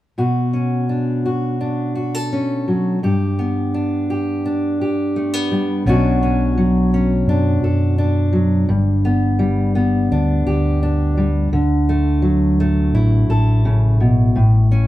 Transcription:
0.18 steel-string acoustic guitar B2 F#4
0.53 steel-string acoustic guitar C#4
0.89 steel-string acoustic guitar D4
1.26 steel-string acoustic guitar F#4
1.61 steel-string acoustic guitar D4
1.95 steel-string acoustic guitar F#4
2.14 steel-string acoustic guitar A4
2.33 steel-string acoustic guitar C#4
2.68 steel-string acoustic guitar F#3
3.03 steel-string acoustic guitar G2 G4
3.39 steel-string acoustic guitar B3
3.74 steel-string acoustic guitar D4
4.10 steel-string acoustic guitar G4
4.45 steel-string acoustic guitar D4
4.81 steel-string acoustic guitar G4
5.16 steel-string acoustic guitar A3
5.33 steel-string acoustic guitar B3
5.51 steel-string acoustic guitar G3
5.85 fingered electric bass B1, steel-string acoustic guitar B2 F#3 C#4 D4 F#4
6.23 steel-string acoustic guitar C#4
6.57 steel-string acoustic guitar F#3
6.94 steel-string acoustic guitar C#4
7.27 fingered electric bass F#2, steel-string acoustic guitar D4
7.62 fingered electric bass F#2, steel-string acoustic guitar A4
7.98 steel-string acoustic guitar D4
8.33 steel-string acoustic guitar F#3
8.69 fingered electric bass G1, steel-string acoustic guitar G2
9.05 steel-string acoustic guitar B3
9.39 steel-string acoustic guitar G3
9.75 steel-string acoustic guitar B3
10.11 fingered electric bass D2, steel-string acoustic guitar D4
10.47 fingered electric bass D2, steel-string acoustic guitar G4
10.83 steel-string acoustic guitar D4
11.17 steel-string acoustic guitar G3
11.52 fingered electric bass D2, steel-string acoustic guitar D3
11.89 steel-string acoustic guitar A3
12.22 steel-string acoustic guitar F#3
12.60 steel-string acoustic guitar A3
12.92 fingered electric bass A1, steel-string acoustic guitar E4
13.28 fingered electric bass A1, steel-string acoustic guitar A4
13.65 steel-string acoustic guitar C#3
14.00 steel-string acoustic guitar B2
14.36 fingered electric bass A1, steel-string acoustic guitar A2
14.72 steel-string acoustic guitar C#4

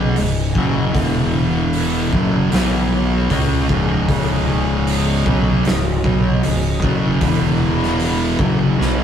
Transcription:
Already playing: fingered electric bass B1, distorted electric guitar B2 F#3 B3, synth drone C#4 G#4 D#5
0.16 fingered electric bass C#1, distorted electric guitar C#2 G#2, open hi-hat
0.55 fingered electric bass F#1, distorted electric guitar F#2 C#3 F#3, kick
0.94 fingered electric bass E1, distorted electric guitar E2 B2 E3, kick, open hi-hat
1.73 open hi-hat
2.12 fingered electric bass F#1, distorted electric guitar F#2 C#3 F#3, kick
2.51 fingered electric bass B1, distorted electric guitar B2 F#3 B3, snare, open hi-hat
3.30 fingered electric bass C#2, distorted electric guitar C#3 G#3 C#4, synth drone C#4 G#4 D#5, kick, open hi-hat
3.68 fingered electric bass C#1, distorted electric guitar C#2 G#2 C#3, kick
4.08 fingered electric bass C#1, distorted electric guitar C#2 G#2 C#3, kick, open hi-hat
4.85 synth drone F#4, open hi-hat
5.26 fingered electric bass B1, distorted electric guitar B2 F#3 B3, kick
5.65 fingered electric bass C#1, distorted electric guitar C#2 G#2, snare, open hi-hat
6.04 fingered electric bass B1, distorted electric guitar B2 F#3 B3, kick
6.43 fingered electric bass C#1, distorted electric guitar C#2 G#2, open hi-hat
6.82 fingered electric bass F#1, distorted electric guitar F#2 C#3 F#3, kick
7.21 fingered electric bass E1, distorted electric guitar E2 B2 E3, kick, open hi-hat
7.83 snare
7.99 open hi-hat
8.39 fingered electric bass F#1, distorted electric guitar F#2 C#3 F#3, kick
8.78 fingered electric bass B1, distorted electric guitar B2 F#3 B3, snare

